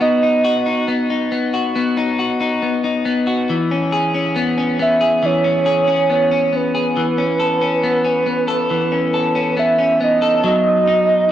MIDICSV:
0, 0, Header, 1, 3, 480
1, 0, Start_track
1, 0, Tempo, 869565
1, 7, Time_signature, 4, 2, 24, 8
1, 6247, End_track
2, 0, Start_track
2, 0, Title_t, "Soft synth lead"
2, 0, Program_c, 0, 80
2, 8, Note_on_c, 0, 75, 74
2, 466, Note_off_c, 0, 75, 0
2, 2659, Note_on_c, 0, 76, 104
2, 2900, Note_on_c, 0, 73, 103
2, 2908, Note_off_c, 0, 76, 0
2, 3373, Note_off_c, 0, 73, 0
2, 3380, Note_on_c, 0, 73, 98
2, 3618, Note_on_c, 0, 71, 85
2, 3626, Note_off_c, 0, 73, 0
2, 5293, Note_off_c, 0, 71, 0
2, 5295, Note_on_c, 0, 76, 86
2, 5515, Note_off_c, 0, 76, 0
2, 5539, Note_on_c, 0, 75, 90
2, 5757, Note_off_c, 0, 75, 0
2, 5772, Note_on_c, 0, 75, 103
2, 6247, Note_off_c, 0, 75, 0
2, 6247, End_track
3, 0, Start_track
3, 0, Title_t, "Clean electric guitar"
3, 0, Program_c, 1, 27
3, 0, Note_on_c, 1, 63, 61
3, 0, Note_on_c, 1, 66, 53
3, 4, Note_on_c, 1, 59, 71
3, 120, Note_off_c, 1, 63, 0
3, 126, Note_on_c, 1, 63, 59
3, 239, Note_off_c, 1, 66, 0
3, 246, Note_on_c, 1, 66, 68
3, 358, Note_off_c, 1, 63, 0
3, 364, Note_on_c, 1, 63, 56
3, 483, Note_off_c, 1, 59, 0
3, 486, Note_on_c, 1, 59, 56
3, 601, Note_off_c, 1, 63, 0
3, 608, Note_on_c, 1, 63, 52
3, 725, Note_off_c, 1, 59, 0
3, 728, Note_on_c, 1, 59, 58
3, 841, Note_off_c, 1, 66, 0
3, 848, Note_on_c, 1, 66, 56
3, 966, Note_off_c, 1, 59, 0
3, 969, Note_on_c, 1, 59, 73
3, 1082, Note_off_c, 1, 63, 0
3, 1088, Note_on_c, 1, 63, 56
3, 1202, Note_off_c, 1, 66, 0
3, 1209, Note_on_c, 1, 66, 55
3, 1321, Note_off_c, 1, 63, 0
3, 1327, Note_on_c, 1, 63, 59
3, 1446, Note_off_c, 1, 59, 0
3, 1448, Note_on_c, 1, 59, 51
3, 1561, Note_off_c, 1, 63, 0
3, 1568, Note_on_c, 1, 63, 61
3, 1683, Note_off_c, 1, 59, 0
3, 1686, Note_on_c, 1, 59, 57
3, 1798, Note_off_c, 1, 66, 0
3, 1805, Note_on_c, 1, 66, 49
3, 1929, Note_on_c, 1, 52, 73
3, 1974, Note_off_c, 1, 66, 0
3, 1976, Note_off_c, 1, 63, 0
3, 2049, Note_on_c, 1, 61, 62
3, 2066, Note_off_c, 1, 59, 0
3, 2166, Note_on_c, 1, 68, 58
3, 2285, Note_off_c, 1, 61, 0
3, 2287, Note_on_c, 1, 61, 59
3, 2406, Note_on_c, 1, 59, 64
3, 2525, Note_off_c, 1, 61, 0
3, 2527, Note_on_c, 1, 61, 54
3, 2644, Note_off_c, 1, 59, 0
3, 2646, Note_on_c, 1, 59, 61
3, 2757, Note_off_c, 1, 68, 0
3, 2764, Note_on_c, 1, 68, 54
3, 2882, Note_off_c, 1, 52, 0
3, 2885, Note_on_c, 1, 52, 71
3, 3002, Note_off_c, 1, 61, 0
3, 3004, Note_on_c, 1, 61, 55
3, 3117, Note_off_c, 1, 68, 0
3, 3124, Note_on_c, 1, 68, 65
3, 3242, Note_off_c, 1, 61, 0
3, 3244, Note_on_c, 1, 61, 62
3, 3364, Note_off_c, 1, 59, 0
3, 3366, Note_on_c, 1, 59, 52
3, 3483, Note_off_c, 1, 61, 0
3, 3485, Note_on_c, 1, 61, 58
3, 3601, Note_off_c, 1, 59, 0
3, 3603, Note_on_c, 1, 59, 48
3, 3717, Note_off_c, 1, 68, 0
3, 3724, Note_on_c, 1, 68, 54
3, 3842, Note_off_c, 1, 52, 0
3, 3845, Note_on_c, 1, 52, 60
3, 3894, Note_off_c, 1, 68, 0
3, 3962, Note_off_c, 1, 61, 0
3, 3964, Note_on_c, 1, 61, 56
3, 3981, Note_off_c, 1, 59, 0
3, 4083, Note_on_c, 1, 69, 54
3, 4196, Note_off_c, 1, 61, 0
3, 4203, Note_on_c, 1, 61, 51
3, 4325, Note_on_c, 1, 59, 59
3, 4435, Note_off_c, 1, 61, 0
3, 4441, Note_on_c, 1, 61, 54
3, 4559, Note_off_c, 1, 59, 0
3, 4561, Note_on_c, 1, 59, 57
3, 4674, Note_off_c, 1, 69, 0
3, 4681, Note_on_c, 1, 69, 56
3, 4797, Note_off_c, 1, 52, 0
3, 4804, Note_on_c, 1, 52, 61
3, 4917, Note_off_c, 1, 61, 0
3, 4923, Note_on_c, 1, 61, 51
3, 5038, Note_off_c, 1, 69, 0
3, 5045, Note_on_c, 1, 69, 62
3, 5156, Note_off_c, 1, 61, 0
3, 5162, Note_on_c, 1, 61, 54
3, 5279, Note_off_c, 1, 59, 0
3, 5282, Note_on_c, 1, 59, 51
3, 5395, Note_off_c, 1, 61, 0
3, 5401, Note_on_c, 1, 61, 59
3, 5521, Note_off_c, 1, 59, 0
3, 5523, Note_on_c, 1, 59, 54
3, 5635, Note_off_c, 1, 69, 0
3, 5641, Note_on_c, 1, 69, 53
3, 5759, Note_off_c, 1, 52, 0
3, 5761, Note_on_c, 1, 54, 83
3, 5812, Note_off_c, 1, 61, 0
3, 5812, Note_off_c, 1, 69, 0
3, 6003, Note_on_c, 1, 63, 60
3, 6247, Note_off_c, 1, 54, 0
3, 6247, Note_off_c, 1, 59, 0
3, 6247, Note_off_c, 1, 63, 0
3, 6247, End_track
0, 0, End_of_file